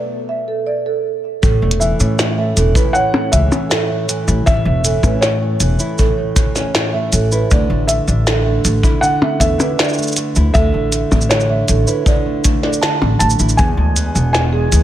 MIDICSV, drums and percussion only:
0, 0, Header, 1, 3, 480
1, 0, Start_track
1, 0, Key_signature, 3, "major"
1, 0, Tempo, 759494
1, 905, Time_signature, 4, 2, 24, 8
1, 9373, End_track
2, 0, Start_track
2, 0, Title_t, "Percussion blips"
2, 1984, Note_on_c, 9, 64, 77
2, 2047, Note_off_c, 9, 64, 0
2, 2225, Note_on_c, 9, 64, 75
2, 2288, Note_off_c, 9, 64, 0
2, 3183, Note_on_c, 9, 64, 58
2, 3246, Note_off_c, 9, 64, 0
2, 5827, Note_on_c, 9, 64, 78
2, 5890, Note_off_c, 9, 64, 0
2, 6067, Note_on_c, 9, 64, 74
2, 6130, Note_off_c, 9, 64, 0
2, 7026, Note_on_c, 9, 64, 58
2, 7089, Note_off_c, 9, 64, 0
2, 8227, Note_on_c, 9, 64, 63
2, 8290, Note_off_c, 9, 64, 0
2, 9373, End_track
3, 0, Start_track
3, 0, Title_t, "Drums"
3, 904, Note_on_c, 9, 36, 127
3, 905, Note_on_c, 9, 69, 32
3, 967, Note_off_c, 9, 36, 0
3, 968, Note_off_c, 9, 69, 0
3, 1082, Note_on_c, 9, 42, 90
3, 1145, Note_on_c, 9, 69, 79
3, 1146, Note_off_c, 9, 42, 0
3, 1208, Note_off_c, 9, 69, 0
3, 1265, Note_on_c, 9, 69, 45
3, 1328, Note_off_c, 9, 69, 0
3, 1384, Note_on_c, 9, 38, 95
3, 1385, Note_on_c, 9, 69, 32
3, 1447, Note_off_c, 9, 38, 0
3, 1448, Note_off_c, 9, 69, 0
3, 1624, Note_on_c, 9, 42, 88
3, 1625, Note_on_c, 9, 69, 71
3, 1687, Note_off_c, 9, 42, 0
3, 1688, Note_off_c, 9, 69, 0
3, 1740, Note_on_c, 9, 36, 108
3, 1744, Note_on_c, 9, 69, 45
3, 1803, Note_off_c, 9, 36, 0
3, 1808, Note_off_c, 9, 69, 0
3, 1864, Note_on_c, 9, 69, 32
3, 1927, Note_off_c, 9, 69, 0
3, 2104, Note_on_c, 9, 36, 60
3, 2104, Note_on_c, 9, 42, 91
3, 2105, Note_on_c, 9, 69, 71
3, 2167, Note_off_c, 9, 36, 0
3, 2167, Note_off_c, 9, 42, 0
3, 2168, Note_off_c, 9, 69, 0
3, 2226, Note_on_c, 9, 69, 45
3, 2289, Note_off_c, 9, 69, 0
3, 2345, Note_on_c, 9, 38, 105
3, 2346, Note_on_c, 9, 69, 35
3, 2409, Note_off_c, 9, 38, 0
3, 2409, Note_off_c, 9, 69, 0
3, 2586, Note_on_c, 9, 42, 96
3, 2587, Note_on_c, 9, 69, 78
3, 2649, Note_off_c, 9, 42, 0
3, 2650, Note_off_c, 9, 69, 0
3, 2706, Note_on_c, 9, 69, 43
3, 2769, Note_off_c, 9, 69, 0
3, 2826, Note_on_c, 9, 36, 127
3, 2826, Note_on_c, 9, 69, 35
3, 2889, Note_off_c, 9, 36, 0
3, 2889, Note_off_c, 9, 69, 0
3, 3063, Note_on_c, 9, 42, 92
3, 3064, Note_on_c, 9, 69, 83
3, 3126, Note_off_c, 9, 42, 0
3, 3127, Note_off_c, 9, 69, 0
3, 3180, Note_on_c, 9, 36, 64
3, 3184, Note_on_c, 9, 69, 44
3, 3244, Note_off_c, 9, 36, 0
3, 3247, Note_off_c, 9, 69, 0
3, 3302, Note_on_c, 9, 38, 93
3, 3303, Note_on_c, 9, 69, 33
3, 3366, Note_off_c, 9, 38, 0
3, 3366, Note_off_c, 9, 69, 0
3, 3541, Note_on_c, 9, 42, 87
3, 3542, Note_on_c, 9, 69, 72
3, 3604, Note_off_c, 9, 42, 0
3, 3605, Note_off_c, 9, 69, 0
3, 3663, Note_on_c, 9, 69, 41
3, 3726, Note_off_c, 9, 69, 0
3, 3782, Note_on_c, 9, 69, 36
3, 3786, Note_on_c, 9, 36, 102
3, 3845, Note_off_c, 9, 69, 0
3, 3849, Note_off_c, 9, 36, 0
3, 4021, Note_on_c, 9, 36, 111
3, 4022, Note_on_c, 9, 42, 92
3, 4023, Note_on_c, 9, 69, 77
3, 4084, Note_off_c, 9, 36, 0
3, 4086, Note_off_c, 9, 42, 0
3, 4086, Note_off_c, 9, 69, 0
3, 4143, Note_on_c, 9, 38, 33
3, 4144, Note_on_c, 9, 69, 44
3, 4207, Note_off_c, 9, 38, 0
3, 4208, Note_off_c, 9, 69, 0
3, 4264, Note_on_c, 9, 38, 106
3, 4265, Note_on_c, 9, 69, 33
3, 4327, Note_off_c, 9, 38, 0
3, 4328, Note_off_c, 9, 69, 0
3, 4504, Note_on_c, 9, 42, 88
3, 4504, Note_on_c, 9, 69, 84
3, 4567, Note_off_c, 9, 42, 0
3, 4568, Note_off_c, 9, 69, 0
3, 4625, Note_on_c, 9, 69, 46
3, 4689, Note_off_c, 9, 69, 0
3, 4747, Note_on_c, 9, 69, 37
3, 4749, Note_on_c, 9, 36, 127
3, 4810, Note_off_c, 9, 69, 0
3, 4812, Note_off_c, 9, 36, 0
3, 4986, Note_on_c, 9, 42, 94
3, 4986, Note_on_c, 9, 69, 80
3, 5049, Note_off_c, 9, 42, 0
3, 5050, Note_off_c, 9, 69, 0
3, 5106, Note_on_c, 9, 69, 47
3, 5170, Note_off_c, 9, 69, 0
3, 5226, Note_on_c, 9, 38, 106
3, 5227, Note_on_c, 9, 69, 35
3, 5289, Note_off_c, 9, 38, 0
3, 5290, Note_off_c, 9, 69, 0
3, 5466, Note_on_c, 9, 42, 79
3, 5467, Note_on_c, 9, 69, 78
3, 5529, Note_off_c, 9, 42, 0
3, 5530, Note_off_c, 9, 69, 0
3, 5583, Note_on_c, 9, 36, 111
3, 5588, Note_on_c, 9, 69, 44
3, 5646, Note_off_c, 9, 36, 0
3, 5651, Note_off_c, 9, 69, 0
3, 5707, Note_on_c, 9, 69, 36
3, 5771, Note_off_c, 9, 69, 0
3, 5941, Note_on_c, 9, 36, 67
3, 5947, Note_on_c, 9, 42, 87
3, 5948, Note_on_c, 9, 69, 80
3, 6004, Note_off_c, 9, 36, 0
3, 6011, Note_off_c, 9, 42, 0
3, 6011, Note_off_c, 9, 69, 0
3, 6068, Note_on_c, 9, 69, 45
3, 6131, Note_off_c, 9, 69, 0
3, 6188, Note_on_c, 9, 38, 104
3, 6189, Note_on_c, 9, 69, 16
3, 6219, Note_off_c, 9, 69, 0
3, 6219, Note_on_c, 9, 69, 19
3, 6250, Note_off_c, 9, 69, 0
3, 6250, Note_on_c, 9, 69, 20
3, 6252, Note_off_c, 9, 38, 0
3, 6279, Note_off_c, 9, 69, 0
3, 6279, Note_on_c, 9, 69, 22
3, 6308, Note_off_c, 9, 69, 0
3, 6308, Note_on_c, 9, 69, 25
3, 6337, Note_off_c, 9, 69, 0
3, 6337, Note_on_c, 9, 69, 29
3, 6367, Note_off_c, 9, 69, 0
3, 6367, Note_on_c, 9, 69, 31
3, 6396, Note_off_c, 9, 69, 0
3, 6396, Note_on_c, 9, 69, 31
3, 6424, Note_on_c, 9, 42, 87
3, 6425, Note_off_c, 9, 69, 0
3, 6425, Note_on_c, 9, 69, 80
3, 6488, Note_off_c, 9, 42, 0
3, 6488, Note_off_c, 9, 69, 0
3, 6545, Note_on_c, 9, 69, 50
3, 6608, Note_off_c, 9, 69, 0
3, 6665, Note_on_c, 9, 69, 34
3, 6667, Note_on_c, 9, 36, 127
3, 6728, Note_off_c, 9, 69, 0
3, 6730, Note_off_c, 9, 36, 0
3, 6904, Note_on_c, 9, 42, 86
3, 6905, Note_on_c, 9, 69, 82
3, 6967, Note_off_c, 9, 42, 0
3, 6968, Note_off_c, 9, 69, 0
3, 7027, Note_on_c, 9, 36, 68
3, 7027, Note_on_c, 9, 69, 41
3, 7087, Note_off_c, 9, 69, 0
3, 7087, Note_on_c, 9, 69, 35
3, 7090, Note_off_c, 9, 36, 0
3, 7146, Note_on_c, 9, 38, 96
3, 7147, Note_off_c, 9, 69, 0
3, 7147, Note_on_c, 9, 69, 32
3, 7207, Note_off_c, 9, 69, 0
3, 7207, Note_on_c, 9, 69, 23
3, 7209, Note_off_c, 9, 38, 0
3, 7270, Note_off_c, 9, 69, 0
3, 7384, Note_on_c, 9, 42, 82
3, 7385, Note_on_c, 9, 69, 75
3, 7447, Note_off_c, 9, 42, 0
3, 7448, Note_off_c, 9, 69, 0
3, 7505, Note_on_c, 9, 69, 41
3, 7569, Note_off_c, 9, 69, 0
3, 7623, Note_on_c, 9, 36, 118
3, 7626, Note_on_c, 9, 69, 35
3, 7686, Note_off_c, 9, 36, 0
3, 7689, Note_off_c, 9, 69, 0
3, 7865, Note_on_c, 9, 42, 79
3, 7866, Note_on_c, 9, 69, 78
3, 7867, Note_on_c, 9, 36, 104
3, 7928, Note_off_c, 9, 42, 0
3, 7929, Note_off_c, 9, 69, 0
3, 7930, Note_off_c, 9, 36, 0
3, 7985, Note_on_c, 9, 38, 31
3, 8046, Note_on_c, 9, 69, 46
3, 8048, Note_off_c, 9, 38, 0
3, 8106, Note_on_c, 9, 38, 101
3, 8107, Note_off_c, 9, 69, 0
3, 8107, Note_on_c, 9, 69, 34
3, 8169, Note_off_c, 9, 38, 0
3, 8170, Note_off_c, 9, 69, 0
3, 8345, Note_on_c, 9, 42, 83
3, 8346, Note_on_c, 9, 69, 77
3, 8406, Note_off_c, 9, 69, 0
3, 8406, Note_on_c, 9, 69, 60
3, 8409, Note_off_c, 9, 42, 0
3, 8465, Note_off_c, 9, 69, 0
3, 8465, Note_on_c, 9, 69, 51
3, 8526, Note_off_c, 9, 69, 0
3, 8526, Note_on_c, 9, 69, 42
3, 8585, Note_off_c, 9, 69, 0
3, 8585, Note_on_c, 9, 69, 36
3, 8588, Note_on_c, 9, 36, 115
3, 8648, Note_off_c, 9, 69, 0
3, 8651, Note_off_c, 9, 36, 0
3, 8825, Note_on_c, 9, 42, 86
3, 8826, Note_on_c, 9, 69, 81
3, 8889, Note_off_c, 9, 42, 0
3, 8890, Note_off_c, 9, 69, 0
3, 8947, Note_on_c, 9, 69, 44
3, 9011, Note_off_c, 9, 69, 0
3, 9066, Note_on_c, 9, 38, 95
3, 9067, Note_on_c, 9, 69, 32
3, 9129, Note_off_c, 9, 38, 0
3, 9130, Note_off_c, 9, 69, 0
3, 9305, Note_on_c, 9, 42, 84
3, 9306, Note_on_c, 9, 69, 75
3, 9368, Note_off_c, 9, 42, 0
3, 9369, Note_off_c, 9, 69, 0
3, 9373, End_track
0, 0, End_of_file